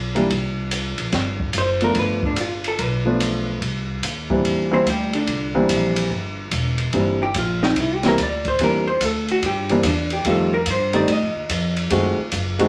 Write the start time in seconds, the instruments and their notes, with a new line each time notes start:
Already playing: upright bass B1
0.15 grand piano E3 G3 A#3 D4, ride
0.30 upright bass C2, kick, ride
0.71 hi-hat pedal, ride
0.98 upright bass A#1, ride
1.12 upright bass G1, kick, snare, ride
1.40 kick
1.53 upright bass F#1, hi-hat pedal, ride
1.58 hollow-body jazz guitar C5
1.81 grand piano F3 A3 B3 D4, hollow-body jazz guitar A#4, ride
1.95 upright bass G1, kick, ride
1.99 hollow-body jazz guitar B4
2.23 hollow-body jazz guitar D4, kick
2.36 hi-hat pedal, ride
2.41 hollow-body jazz guitar F4
2.64 hollow-body jazz guitar A4, ride
2.78 upright bass B1, hollow-body jazz guitar B4, kick, ride
3.05 grand piano F3 A3 B3 D4
3.20 hi-hat pedal, ride
3.61 upright bass C2, kick, ride
4.03 upright bass D#2, kick, hi-hat pedal, ride
4.30 grand piano E3 G3 A#3 C4 D4, kick
4.44 upright bass E2, kick, ride
4.71 grand piano E3 G3 A#3 C4 E4, hollow-body jazz guitar C4 C5
4.86 upright bass D2, hollow-body jazz guitar G3 G4, kick, hi-hat pedal, ride
5.13 hollow-body jazz guitar D3 D4, ride
5.27 upright bass C2, kick, ride
5.55 grand piano E3 G3 A#3 C4 D4
5.69 upright bass A#1, kick, hi-hat pedal, ride
5.96 ride
6.10 upright bass G1, kick
6.51 upright bass E1, kick, hi-hat pedal, ride
6.78 ride
6.93 upright bass G1, grand piano E3 G3 A#3 C4 D4, kick, ride
7.23 hollow-body jazz guitar G4
7.34 upright bass A#1, kick, hi-hat pedal, ride
7.38 hollow-body jazz guitar F4
7.63 hollow-body jazz guitar D#4, snare
7.76 upright bass C2, kick, ride
7.80 hollow-body jazz guitar E4
7.95 hollow-body jazz guitar G4
8.03 grand piano E3 G3 A#3 C4 E4, snare, ride
8.08 hollow-body jazz guitar A#4
8.18 upright bass D2, kick, hi-hat pedal, ride
8.23 hollow-body jazz guitar D5
8.45 hollow-body jazz guitar C5, kick, ride
8.59 upright bass E2, grand piano E3 G3 A#3 C4 D4, kick, ride
8.64 hollow-body jazz guitar A#4
8.87 hollow-body jazz guitar C5
9.01 upright bass D2, hollow-body jazz guitar A4, kick, hi-hat pedal, ride
9.28 hollow-body jazz guitar F#4, ride
9.42 upright bass G2, hollow-body jazz guitar G4, kick, ride
9.69 grand piano E3 G3 A#3 C4 D4, hollow-body jazz guitar A#3, ride
9.83 upright bass E2, hollow-body jazz guitar D4, kick, hi-hat pedal, ride
10.10 hollow-body jazz guitar G4, ride
10.25 upright bass F2, grand piano D#3 G3 A3 C4 F4, kick, ride
10.30 hollow-body jazz guitar A4
10.54 hollow-body jazz guitar A#4
10.66 upright bass G2, kick, hi-hat pedal, ride
10.71 hollow-body jazz guitar C5
10.93 grand piano D#3 G3 A3 C4 D#4, hollow-body jazz guitar D5, ride
11.08 upright bass A2, kick, ride
11.12 hollow-body jazz guitar D#5
11.21 upright bass F2
11.35 upright bass D#2
11.49 upright bass F2, kick, hi-hat pedal, ride
11.77 ride
11.90 upright bass F#2, grand piano D#3 G#3 A3 C4 F#4, kick, ride
12.18 muted upright bass stroke
12.32 upright bass F#1, kick, hi-hat pedal, ride
12.59 grand piano D#3 G#3 A3 C4 F#4, ride